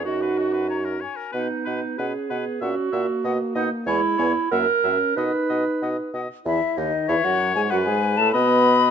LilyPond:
<<
  \new Staff \with { instrumentName = "Flute" } { \time 2/4 \key b \major \tempo 4 = 94 dis''16 fis''16 dis''16 fis''16 ais''8 gis''8 | fis''8 fis''8 fis''8 fis''8 | fis''8 fis''8 fis''8 fis''8 | gis''8 gis''8 fis''8 fis''8 |
fis''8 fis''8 fis''8 fis''8 | \key e \major e''8 dis''8 e''16 fis''8 gis''16 | fis''16 gis''8 a''16 b''4 | }
  \new Staff \with { instrumentName = "Oboe" } { \time 2/4 \key b \major fis'16 b'16 fis'16 b'16 cis''16 ais'16 cis''16 ais'16 | b'8 b'8 b'8 b'8 | e''8 e''8 dis''8 dis''8 | cis''8 cis''8 e''8 e''8 |
dis''8 dis''8 dis''8 dis''8 | \key e \major r4 cis''4 | b'4 dis''4 | }
  \new Staff \with { instrumentName = "Clarinet" } { \time 2/4 \key b \major fis'4. r8 | dis'4 gis'4 | fis'4. dis'8 | e'4 ais'4 |
b'4. r8 | \key e \major e'8 dis'8 e'16 fis'8 gis'16 | fis'16 gis'8 a'16 b'4 | }
  \new Staff \with { instrumentName = "French horn" } { \time 2/4 \key b \major dis'4. r8 | b4 cis'8 b8 | cis'8 ais4. | gis8 b8 ais8 cis'8 |
dis'4. r8 | \key e \major e8 dis8 e16 fis8 gis16 | fis16 gis8 a16 b4 | }
  \new Staff \with { instrumentName = "Bassoon" } { \clef bass \time 2/4 \key b \major fis,4. r8 | b,8 b,8 b,8 b,8 | ais,8 ais,8 b,8 b,8 | e,8 e,8 fis,8 fis,8 |
b,8 b,8 b,8 b,8 | \key e \major e,8 dis,8 e,16 fis,8 gis,16 | fis,16 gis,8 a,16 b,4 | }
>>